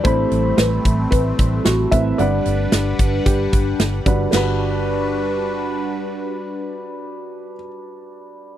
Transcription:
<<
  \new Staff \with { instrumentName = "Felt piano" } { \time 4/4 \key g \major \tempo 4 = 112 c''4 b'4 b'4 fis'8 e''8 | d''2 g'4. r8 | b'1~ | b'1 | }
  \new Staff \with { instrumentName = "Grand piano" } { \time 4/4 \key g \major <a c' e' b''>2.~ <a c' e' b''>8 <a c' e' b'>8 | <g d' b' fis''>2.~ <g d' b' fis''>8 <g d' fis' b'>8 | <g d' fis' b'>1~ | <g d' fis' b'>1 | }
  \new Staff \with { instrumentName = "Analog synth pad" } { \time 4/4 \key g \major <g a c'>1 | <g d' b' fis''>1 | <g d' fis' b'>1~ | <g d' fis' b'>1 | }
  \new Staff \with { instrumentName = "Fingered electric bass" } { \clef bass \time 4/4 \key g \major a,,8 a,,8 a,,8 a,,8 a,,8 a,,8 a,,8 a,,8 | g,,8 g,,8 g,,8 g,,8 g,,8 g,,8 g,,8 g,,8 | g,,1~ | g,,1 | }
  \new DrumStaff \with { instrumentName = "Drums" } \drummode { \time 4/4 <hh bd>8 hh8 <hh sn>8 <hh bd>8 <hh bd>8 <hh bd>8 <hh sn>8 <hh bd>8 | hh8 hh8 <hh sn>8 <hh bd>8 <hh bd>8 <hh bd>8 <hh sn>8 <hh bd>8 | <cymc sn>4 r4 r4 r4 | r4 r4 r4 r4 | }
>>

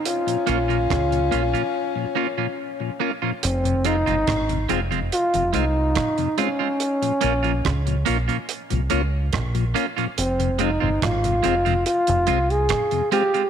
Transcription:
<<
  \new Staff \with { instrumentName = "Trombone" } { \time 4/4 \key f \minor \tempo 4 = 71 f'2. r4 | c'8 ees'4 r8 f'8 ees'4 des'8~ | des'4. r2 r8 | c'8 ees'8 f'4 f'8. aes'8. g'8 | }
  \new Staff \with { instrumentName = "Clean electric guitar" } { \time 4/4 \key f \minor r8 <bes des' f'>16 <bes des' f'>16 r8 <bes des' f'>16 <bes des' f'>16 r8 <bes des' f'>16 <bes des' f'>16 r8 <bes des' f'>16 <bes des' f'>16 | r8 <aes c' f'>16 <aes c' f'>16 r8 <aes c' f'>16 <aes c' f'>16 r8 <aes c' f'>16 r8. <aes c' f'>16 <aes c' f'>16 | r8 <bes des' f'>16 <bes des' f'>16 r8 <bes des' f'>16 <bes des' f'>16 r8 <bes des' f'>16 r8. <bes des' f'>16 <bes des' f'>16 | r8 <aes c' f'>16 <aes c' f'>16 r8 <aes c' f'>16 <aes c' f'>16 r8 <aes c' f'>16 r8. <aes c' f'>16 <aes c' f'>16 | }
  \new Staff \with { instrumentName = "Tenor saxophone" } { \time 4/4 \key f \minor des'2.~ des'8 r8 | r1 | r1 | r1 | }
  \new Staff \with { instrumentName = "Tonewheel organ" } { \time 4/4 \key f \minor r8 <bes des' f'>8 r8 <bes des' f'>8 r8 <bes des' f'>8 r8 <bes des' f'>8 | r8 <aes c' f'>8 r8 <aes c' f'>8 r8 <aes c' f'>8 r8 <aes c' f'>8 | r8 <bes des' f'>8 r8 <bes des' f'>8 r8 <bes des' f'>8 r8 <bes des' f'>8 | r8 <aes c' f'>8 r8 <aes c' f'>8 r8 <aes c' f'>8 r8 <aes c' f'>8 | }
  \new Staff \with { instrumentName = "Tonewheel organ" } { \clef bass \time 4/4 \key f \minor r16 <bes, f>16 r16 <bes, f>16 r16 <bes, f>16 r16 <bes, f>16 r16 <bes, f>16 r16 <bes, f>16 r16 <bes, f>16 r16 <bes, f>16 | r16 <f, c>16 r16 <f, c>16 r16 <f, c>16 r16 <f, c>16 r16 <f, c>16 r8. <f, c>16 r8 | r16 <bes, f>16 r16 <bes, f>16 r16 <bes, f>16 r16 <bes, f>16 r16 <bes, f>16 r8. <bes, f>16 r16 <bes, f>16 | r16 <f, c>16 r16 <f, c>16 r16 <f, c>16 r16 <f, c>16 r16 <f, c>16 r8. <f, c>16 r8 | }
  \new Staff \with { instrumentName = "Fingered electric bass" } { \clef bass \time 4/4 \key f \minor r8 bes,,8 des,8 bes,,16 r2 r16 | f,,8. g,,16 aes,,8 f,,8 r16 f,,16 c,8 r4 | r8 bes,,8 des,8 bes,,16 r8 c,16 des,8 bes,,8 r8 | f,,8. g,,16 aes,,8 f,,8 r16 f,,16 c,8 r4 | }
  \new DrumStaff \with { instrumentName = "Drums" } \drummode { \time 4/4 hh16 hh16 hh16 hh16 <hh bd ss>16 hh16 hh16 hh16 r4 r4 | hh16 hh16 hh16 hh16 <hh bd ss>16 hh16 hh16 hh16 hh16 hh16 hh8 <hh bd ss>16 hh16 hh8 | hh16 hh16 hh16 hh16 <hh bd ss>16 hh16 hh16 hh16 hh16 hh16 hh8 <hh bd ss>16 hh16 hh16 hh16 | hh16 hh16 hh8 <hh bd ss>16 hh16 hh16 hh16 hh16 hh16 hh16 hh16 <hh bd ss>16 hh16 hh16 hh16 | }
>>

